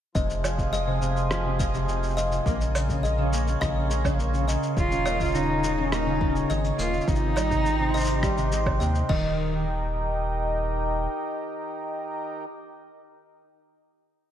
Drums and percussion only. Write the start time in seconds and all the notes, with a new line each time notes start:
0.15 kick, cabasa
0.30 cabasa
0.44 cabasa, low woodblock
0.58 kick, cabasa
0.73 cabasa
1.02 cabasa
1.17 cabasa
1.31 cross-stick, cabasa
1.59 kick, cabasa
1.74 cabasa
1.89 cabasa
2.03 cabasa
2.06 cabasa
2.08 cabasa
2.10 cabasa
2.13 cabasa
2.15 cabasa
2.17 cabasa
2.32 cabasa
2.46 kick, cabasa
2.61 cabasa
2.75 cabasa, low woodblock
2.89 kick, cabasa
3.04 cabasa
3.33 cabasa
3.47 cabasa
3.61 kick, cross-stick, cabasa
3.91 cabasa
4.05 kick, cabasa, low woodblock
4.19 cabasa
4.34 cabasa
4.48 cabasa
4.63 cabasa
4.77 kick, cabasa
4.92 cabasa
5.06 cabasa, low woodblock
5.20 kick, cabasa
5.24 cabasa
5.28 cabasa
5.31 cabasa
5.35 cabasa
5.38 cabasa
5.46 cabasa
5.64 cabasa
5.92 cross-stick, cabasa
6.21 kick
6.36 cabasa
6.50 cabasa
6.64 cabasa
6.79 cabasa
6.93 cabasa
7.01 cabasa
7.08 kick, cabasa
7.15 cabasa
7.37 cabasa, low woodblock
7.51 kick, cabasa
7.66 cabasa
7.94 cabasa
7.96 cabasa
7.99 cabasa
8.01 cabasa
8.04 cabasa
8.06 cabasa
8.08 cabasa
8.23 kick, cross-stick, cabasa
8.37 cabasa
8.52 cabasa
8.66 kick, low woodblock
8.81 cabasa
8.95 cabasa
9.09 kick, crash